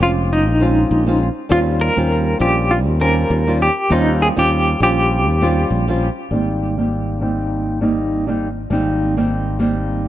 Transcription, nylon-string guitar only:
0.00 0.57 G#3 medium
0.00 0.58 C4 medium
0.00 0.58 C#4 medium
0.00 0.58 F4 medium
0.60 1.03 G#3 medium
0.60 1.03 C4 medium
0.60 1.04 C#4 medium
0.60 1.04 F4 medium
1.06 1.26 G#3 medium
1.06 1.27 C4 medium
1.06 1.27 C#4 medium
1.06 1.27 F4 medium
1.49 1.93 G3 medium
1.49 1.93 C4 medium
1.49 1.93 C#4 medium
1.49 1.94 F4 loud
1.96 2.37 G3 medium
1.96 2.37 C4 medium
1.96 2.38 C#4 medium
1.96 2.38 F4 medium
2.39 2.97 G3 medium
2.39 2.97 C4 medium
2.39 2.98 C#4 medium
2.39 2.98 F4 medium
3.00 3.43 G3 medium
3.00 3.43 C4 medium
3.00 3.43 C#4 medium
3.00 3.44 F4 medium
3.47 3.67 G3 medium
3.47 3.67 C4 medium
3.47 3.67 C#4 medium
3.47 3.67 F4 medium
3.90 4.33 G3 loud
3.90 4.33 C4 medium
3.90 4.33 C#4 medium
3.90 4.34 F4 loud
4.36 4.77 G3 medium
4.36 4.77 C4 medium
4.36 4.77 C#4 medium
4.36 4.78 F4 medium
4.81 5.38 G3 medium
4.81 5.38 C4 medium
4.81 5.38 C#4 medium
4.81 5.39 F4 medium
5.41 5.83 G3 medium
5.41 5.84 C4 medium
5.41 5.84 C#4 medium
5.41 5.84 F4 loud
5.88 6.07 G3 medium
5.88 6.07 C4 medium
5.88 6.08 C#4 medium
5.88 6.08 F4 medium
6.31 6.73 G3 medium
6.31 6.74 A#3 medium
6.31 6.74 C4 medium
6.31 6.74 D#4 medium
6.77 7.18 G3 medium
6.77 7.18 A#3 medium
6.77 7.18 C4 medium
6.77 7.19 D#4 medium
7.20 7.77 G3 medium
7.20 7.78 A#3 medium
7.20 7.78 C4 medium
7.20 7.78 D#4 medium
7.81 8.23 G3 medium
7.81 8.24 A#3 medium
7.81 8.24 C4 medium
7.81 8.24 D#4 medium
8.27 8.47 G3 medium
8.27 8.47 A#3 medium
8.27 8.47 C4 medium
8.27 8.47 D#4 medium
8.70 9.13 G3 medium
8.70 9.13 A#3 medium
8.70 9.14 C4 medium
8.70 9.14 D#4 medium
9.17 9.57 G3 medium
9.17 9.58 A#3 medium
9.17 9.58 C4 medium
9.17 9.58 D#4 medium
9.59 10.08 G3 medium
9.59 10.08 A#3 medium
9.59 10.08 C4 medium
9.59 10.08 D#4 medium

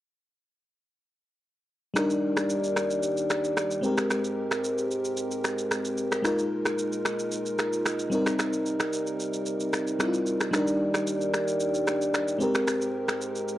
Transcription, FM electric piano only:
1.94 3.79 G3 medium
1.94 3.80 D4 medium
1.94 3.80 D#4 medium
1.99 3.81 A#4 medium
3.81 5.93 G#3 medium
3.81 5.94 C4 medium
3.81 5.94 G4 medium
3.86 5.95 A#4 medium
6.22 8.07 G#3 medium
6.22 8.08 D#4 medium
6.22 8.09 F4 medium
6.27 8.10 A#4 medium
8.10 9.95 G3 medium
8.10 9.96 C4 medium
8.10 9.97 D#4 medium
8.15 9.97 A#4 medium
9.99 10.50 G3 medium
9.99 10.53 C4 soft
9.99 10.53 D#4 soft
9.99 10.07 E4 soft
10.08 10.57 F4 medium
10.51 12.36 G3 medium
10.51 12.37 D4 medium
10.51 12.38 D#4 medium
10.56 12.38 A#4 medium
12.38 13.58 G#3 medium
12.38 13.58 C4 medium
12.38 13.58 G4 medium
12.43 13.58 A#4 medium

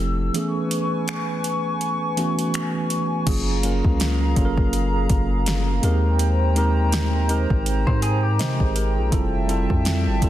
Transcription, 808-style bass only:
0.00 0.30 F1 loud
3.27 3.82 F#1 loud
3.85 4.35 C#2 loud
4.37 4.57 F#1 loud
4.58 5.08 F#1 loud
5.10 5.80 F#1 loud
5.83 7.47 D#2 loud
7.51 7.86 G#1 loud
7.87 8.41 G#2 loud
8.39 8.59 C3 medium
8.61 8.99 G#1 loud
8.97 9.12 A#1 medium
9.12 9.68 F1 loud
9.70 10.09 F2 loud
10.07 10.21 G1 loud
10.22 10.29 F1 loud

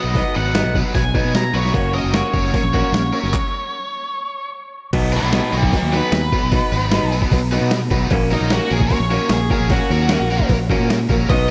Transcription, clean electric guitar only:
0.00 0.14 F#3 medium
0.00 0.14 B3 medium
0.16 0.35 F#3 medium
0.16 0.35 B3 medium
0.16 0.35 D#4 medium
0.37 0.54 F#3 medium
0.37 0.54 B3 medium
0.55 0.74 F#3 medium
0.55 0.74 B3 medium
0.55 0.75 D#4 medium
0.76 0.94 F#3 medium
0.76 0.94 B3 medium
0.95 1.13 F#3 medium
0.95 1.13 B3 medium
1.14 1.33 F#3 medium
1.14 1.34 B3 medium
1.14 1.34 D#4 medium
1.35 1.53 F#3 medium
1.35 1.53 B3 medium
1.55 1.73 F#3 medium
1.55 1.73 B3 medium
1.74 1.93 A#3 medium
1.74 1.94 C#4 medium
1.74 1.94 F#4 medium
1.94 2.13 A#3 medium
1.94 2.13 C#4 medium
2.14 2.32 A#3 medium
2.14 2.33 C#4 medium
2.14 2.34 F#4 medium
2.33 2.52 A#3 medium
2.33 2.52 C#4 medium
2.54 2.72 A#3 medium
2.54 2.72 C#4 medium
2.74 2.92 A#3 medium
2.74 2.93 C#4 medium
2.74 2.94 F#4 medium
2.93 3.12 A#3 medium
2.93 3.12 C#4 medium
3.13 3.32 A#3 medium
3.13 3.32 C#4 medium
4.93 5.12 F#3 medium
4.93 5.12 B3 medium
4.93 5.13 D#4 medium
5.13 5.32 F#3 medium
5.13 5.32 B3 medium
5.33 5.51 F#3 medium
5.33 5.51 B3 medium
5.33 5.52 D#4 medium
5.52 5.71 F#3 medium
5.52 5.71 B3 medium
5.72 5.91 F#3 medium
5.72 5.91 B3 medium
5.93 6.12 F#3 medium
5.93 6.12 B3 medium
5.93 6.13 D#4 medium
6.13 6.31 F#3 medium
6.13 6.31 B3 medium
6.32 6.51 F#3 medium
6.32 6.51 B3 medium
6.52 6.71 F#3 medium
6.52 6.72 B3 medium
6.52 6.72 D#4 loud
6.73 6.91 F#3 medium
6.73 6.91 B3 medium
6.93 7.11 F#3 medium
6.93 7.12 B3 medium
6.93 7.12 D#4 medium
7.12 7.31 F#3 medium
7.12 7.31 B3 medium
7.32 7.51 F#3 medium
7.32 7.51 B3 medium
7.52 7.71 F#3 medium
7.52 7.71 B3 loud
7.52 7.72 D#4 medium
7.72 7.90 F#3 medium
7.72 7.91 B3 medium
7.91 8.10 F#3 medium
7.91 8.10 B3 medium
8.11 8.30 F#3 medium
8.11 8.31 A#3 loud
8.11 8.31 C#4 medium
8.31 8.50 F#3 medium
8.31 8.50 A#3 medium
8.51 8.69 F#3 medium
8.51 8.69 A#3 medium
8.51 8.71 C#4 medium
8.70 8.89 F#3 medium
8.70 8.89 A#3 medium
8.90 9.09 F#3 medium
8.90 9.09 A#3 medium
9.10 9.30 F#3 medium
9.10 9.30 A#3 loud
9.10 9.30 C#4 loud
9.31 9.49 F#3 medium
9.31 9.49 A#3 medium
9.51 9.69 F#3 medium
9.51 9.69 A#3 medium
9.71 9.89 F#3 medium
9.71 9.90 A#3 medium
9.71 9.90 C#4 loud
9.90 10.09 F#3 medium
9.90 10.09 A#3 medium
10.10 10.29 F#3 medium
10.10 10.30 A#3 medium
10.10 10.30 C#4 loud
10.31 10.49 F#3 medium
10.31 10.49 A#3 medium
10.51 10.69 F#3 medium
10.51 10.69 A#3 medium
10.70 10.89 F#3 medium
10.70 10.89 A#3 medium
10.70 10.89 C#4 loud
10.91 11.09 F#3 medium
10.91 11.09 A#3 medium
11.11 11.28 F#3 medium
11.11 11.29 A#3 medium
11.30 11.49 F#3 medium
11.30 11.49 B3 medium
11.30 11.49 D#4 loud

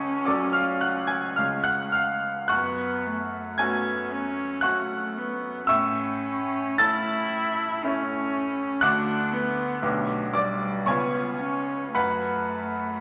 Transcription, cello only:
0.00 1.96 C#4 medium
2.52 3.08 B3 medium
3.06 3.62 A3 soft
3.61 4.13 B3 medium
4.11 4.67 C#4 medium
4.65 5.19 A3 medium
5.17 5.70 B3 medium
5.71 6.82 C#4 medium
6.80 7.86 E4 medium
7.84 8.85 C#4 medium
8.84 9.34 D4 medium
9.33 9.83 B3 medium
9.82 10.34 A3 medium
10.34 10.88 G3 medium
10.86 11.42 B3 medium
11.40 11.95 C#4 medium
11.95 13.00 A3 medium

